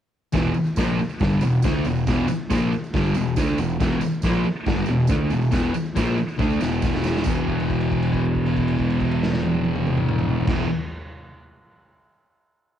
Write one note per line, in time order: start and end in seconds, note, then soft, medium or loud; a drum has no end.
0.32 0.54 E1 medium
0.32 0.54 E2 loud
0.32 0.54 B2 loud
0.32 0.55 E3 loud
0.32 kick loud
0.32 snare loud
0.32 open hi-hat medium
0.32 tambourine medium
0.54 muted picked electric bass stroke soft
0.54 muted distorted electric guitar stroke medium
0.54 tambourine medium
0.76 0.97 A#1 medium
0.76 0.98 A#2 medium
0.76 0.98 F3 medium
0.76 0.99 A#3 medium
0.76 kick loud
0.76 snare loud
0.76 open hi-hat medium
0.76 tambourine medium
0.98 muted picked electric bass stroke soft
0.98 muted distorted electric guitar stroke medium
0.98 tambourine soft
1.09 tambourine soft
1.19 1.40 G1 medium
1.19 1.41 G2 medium
1.19 1.42 D3 medium
1.19 1.42 G3 loud
1.19 kick loud
1.19 snare loud
1.19 open hi-hat medium
1.19 tambourine soft
1.30 tambourine soft
1.41 1.62 E1 medium
1.41 1.59 E2 medium
1.41 1.60 B2 medium
1.41 tambourine medium
1.62 1.84 D2 medium
1.62 1.85 D3 medium
1.62 1.85 A3 loud
1.62 1.86 D4 loud
1.62 kick loud
1.62 snare loud
1.62 open hi-hat medium
1.62 tambourine medium
1.84 2.06 E1 medium
1.84 2.03 E2 medium
1.84 2.03 B2 medium
1.84 tambourine medium
1.95 tambourine soft
2.07 2.27 E1 loud
2.07 2.28 E2 medium
2.07 2.28 B2 loud
2.07 2.29 E3 loud
2.07 kick loud
2.07 snare loud
2.07 open hi-hat medium
2.07 tambourine medium
2.28 muted distorted electric guitar stroke medium
2.28 tambourine medium
2.50 2.70 A#1 loud
2.50 2.71 A#2 medium
2.50 2.72 F3 loud
2.50 2.72 A#3 medium
2.50 kick loud
2.50 snare loud
2.50 open hi-hat medium
2.50 tambourine medium
2.73 muted picked electric bass stroke soft
2.73 muted distorted electric guitar stroke medium
2.73 tambourine soft
2.84 tambourine soft
2.93 3.14 G1 medium
2.93 3.15 G2 medium
2.93 3.15 D3 medium
2.93 3.16 G3 loud
2.93 kick loud
2.93 snare loud
2.93 open hi-hat medium
2.93 tambourine soft
3.06 tambourine soft
3.14 3.35 E1 medium
3.14 3.33 E2 medium
3.14 3.34 B2 medium
3.14 tambourine medium
3.36 3.57 D2 medium
3.36 3.58 D3 medium
3.36 3.58 A3 medium
3.36 3.59 D4 loud
3.36 kick loud
3.36 snare loud
3.36 open hi-hat medium
3.36 tambourine medium
3.58 3.79 E1 medium
3.58 3.76 E2 medium
3.58 3.76 B2 medium
3.58 tambourine medium
3.70 tambourine soft
3.80 4.00 E1 loud
3.80 4.00 E2 medium
3.80 4.02 B2 loud
3.80 4.02 E3 loud
3.80 kick loud
3.80 snare loud
3.80 open hi-hat medium
3.80 tambourine medium
4.01 muted picked electric bass stroke soft
4.01 muted distorted electric guitar stroke medium
4.01 tambourine medium
4.22 4.44 A#1 medium
4.22 4.45 A#2 medium
4.22 4.45 F3 medium
4.22 4.46 A#3 loud
4.22 kick loud
4.22 snare loud
4.22 open hi-hat medium
4.22 tambourine medium
4.44 muted picked electric bass stroke soft
4.44 muted distorted electric guitar stroke medium
4.44 tambourine soft
4.66 4.86 G1 medium
4.66 4.88 G2 loud
4.66 4.88 D3 medium
4.66 4.89 G3 loud
4.66 kick loud
4.66 snare loud
4.66 open hi-hat medium
4.66 tambourine soft
4.76 tambourine soft
4.86 5.08 E1 medium
4.86 5.06 E2 medium
4.86 5.06 B2 medium
4.86 tambourine medium
5.07 5.30 D2 medium
5.07 5.31 D3 medium
5.07 5.31 A3 medium
5.07 kick loud
5.07 snare loud
5.07 open hi-hat medium
5.07 tambourine medium
5.11 5.31 D4 loud
5.30 5.51 E1 medium
5.30 5.49 E2 medium
5.30 5.49 B2 medium
5.30 tambourine medium
5.41 tambourine soft
5.51 5.72 E1 medium
5.51 5.73 E2 loud
5.51 5.74 B2 loud
5.51 5.74 E3 loud
5.51 kick loud
5.51 snare loud
5.51 open hi-hat medium
5.51 tambourine medium
5.74 muted picked electric bass stroke soft
5.74 muted distorted electric guitar stroke medium
5.74 tambourine medium
5.86 tambourine soft
5.95 6.16 A#1 medium
5.95 6.17 A#2 medium
5.95 6.17 F3 medium
5.95 6.18 A#3 medium
5.95 kick loud
5.95 snare loud
5.95 open hi-hat medium
5.95 tambourine medium
6.07 tambourine soft
6.17 muted distorted electric guitar stroke medium
6.17 muted picked electric bass stroke soft
6.17 tambourine soft
6.28 tambourine soft
6.38 6.59 D2 medium
6.38 6.59 D3 medium
6.38 6.60 A3 loud
6.38 6.61 D4 loud
6.38 kick loud
6.38 snare medium
6.38 tambourine soft
6.50 tambourine soft
6.60 7.22 E1 medium
6.60 7.24 E2 medium
6.60 7.25 B2 medium
6.60 7.25 E3 medium
6.60 snare medium
6.60 tambourine medium
6.72 tambourine soft
6.82 kick loud
6.82 snare medium
6.82 tambourine medium
6.93 snare medium
6.93 tambourine soft
7.04 snare loud
7.04 tambourine medium
7.14 snare medium
7.14 tambourine soft
7.24 10.38 E1 loud
7.24 10.47 E2 loud
7.24 10.49 B2 loud
7.24 kick loud
7.24 crash medium
7.24 tambourine medium
7.29 10.51 E3 loud
7.48 kick medium
7.48 crash soft
7.60 crash soft
7.70 kick medium
7.70 crash soft
7.81 crash soft
7.92 kick medium
7.92 crash soft
8.02 crash soft
8.13 kick medium
8.13 crash soft
8.25 crash soft
8.35 kick medium
8.35 crash medium
8.46 crash medium
8.57 kick medium
8.57 crash soft
8.68 crash medium
8.78 kick medium
8.78 crash soft
8.90 crash soft
9.00 kick medium
9.00 crash medium
9.11 crash medium
9.23 snare medium
9.33 snare medium
9.43 high tom medium
9.55 high tom medium
9.65 high tom medium
9.76 mid tom loud
9.87 mid tom loud
9.97 mid tom loud
10.09 mid tom loud
10.19 mid tom loud
10.29 floor tom loud
10.41 floor tom loud
10.47 10.65 E1 medium
10.47 10.67 E2 medium
10.47 10.68 B2 medium
10.47 kick loud
10.47 snare medium
10.47 crash medium
10.51 10.69 E3 medium